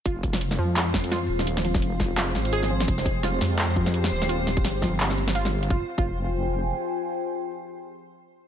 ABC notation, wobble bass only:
X:1
M:4/4
L:1/16
Q:"Swing 16ths" 1/4=170
K:Fm
V:1 name="Wobble bass" clef=bass
F,,,6 F,,8 E,,,2- | E,,,4 F,,,6 A,,,6 | F,,,6 F,,8 E,,,2- | E,,,4 G,,,12 |
F,,, z2 F,,,8- F,,, z4 | z16 |]